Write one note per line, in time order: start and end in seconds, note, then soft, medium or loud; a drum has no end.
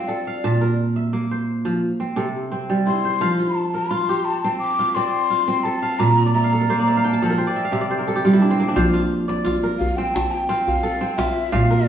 0.00 1.71 C4 medium
0.00 1.02 F4 medium
0.00 0.49 D5 medium
0.08 0.67 A4 medium
0.08 0.78 D5 medium
0.27 1.02 F5 medium
0.44 1.87 A#2 medium
0.44 1.19 A5 medium
0.61 1.89 A#4 medium
0.96 1.71 E5 medium
1.13 2.23 A#3 medium
1.31 2.50 C5 medium
1.65 1.87 F3 medium
2.00 2.51 C4 medium
2.16 3.26 C3 medium
2.16 3.48 A4 medium
2.52 4.32 C4 medium
2.70 3.26 G3 medium
2.86 3.45 E4 medium
2.86 3.58 C6 medium
3.05 4.24 C5 medium
3.21 5.55 F3 medium
3.21 4.21 F5 medium
3.39 3.90 F4 medium
3.56 3.92 A5 medium
3.74 5.01 A#4 medium
3.90 4.78 F4 medium
3.90 4.26 C6 medium
4.09 5.50 G4 medium
4.25 4.59 A5 medium
4.44 4.96 C4 medium
4.59 4.96 D6 medium
4.79 5.30 F4 medium
4.95 5.47 C4 medium
4.95 6.07 D5 medium
4.95 5.65 C6 medium
5.30 6.40 F4 medium
5.48 7.28 C4 medium
5.64 6.52 A4 medium
5.64 6.00 A5 medium
5.82 6.40 F5 medium
5.99 7.43 A#2 medium
5.99 6.33 A#5 medium
6.26 6.79 D5 medium
6.33 6.87 E5 medium
6.33 7.06 A#5 medium
6.44 6.94 F5 medium
6.53 6.76 A4 medium
6.61 7.19 A#4 medium
6.70 7.19 A#3 medium
6.70 7.38 C5 medium
6.79 7.47 D5 medium
6.88 7.28 E5 medium
6.97 7.62 F5 medium
7.04 7.97 G5 medium
7.04 7.40 A5 medium
7.13 7.36 A5 medium
7.22 7.43 F3 medium
7.22 8.05 A4 medium
7.30 7.98 A#4 medium
7.38 7.90 C5 medium
7.38 8.42 G5 medium
7.47 7.81 D5 medium
7.56 7.72 E5 medium
7.65 8.39 F5 medium
7.72 8.81 C3 medium
7.72 8.31 E5 medium
7.81 8.92 D5 medium
7.91 8.75 C5 medium
7.99 9.26 A#4 medium
8.08 8.66 A4 medium
8.16 9.57 G4 medium
8.25 8.81 G3 medium
8.25 8.93 F4 medium
8.33 8.82 E4 medium
8.42 8.68 D4 medium
8.51 9.98 C4 medium
8.60 10.53 A#3 medium
8.68 10.36 D4 medium
8.76 11.10 F3 medium
8.76 9.95 C5 medium
8.76 djembe slap soft
8.76 djembe bass medium
8.93 9.44 F4 medium
8.93 djembe tone soft
9.12 djembe slap soft
9.28 10.39 D5 medium
9.28 djembe slap soft
9.44 10.49 F4 medium
9.44 djembe tone medium
9.63 10.89 A#4 medium
9.78 9.98 F5 medium
9.78 djembe bass medium
9.97 10.49 C4 medium
9.97 10.16 G5 medium
9.97 djembe slap soft
10.14 10.33 A5 loud
10.14 djembe slap medium
10.14 djembe tone medium
10.31 10.66 G5 loud
10.49 11.00 C4 medium
10.49 11.17 F4 medium
10.49 djembe slap soft
10.67 11.14 F5 medium
10.67 djembe tone soft
10.67 djembe bass soft
10.83 11.58 A4 medium
11.01 11.88 C4 medium
11.01 djembe slap soft
11.17 11.88 F4 medium
11.17 11.53 E5 medium
11.17 djembe slap medium
11.17 djembe tone medium
11.52 11.88 A#2 medium
11.52 11.86 F5 loud
11.52 11.88 F5 medium
11.52 djembe slap soft
11.52 djembe bass medium
11.71 11.88 A#4 medium
11.71 djembe tone soft
11.85 11.88 D5 medium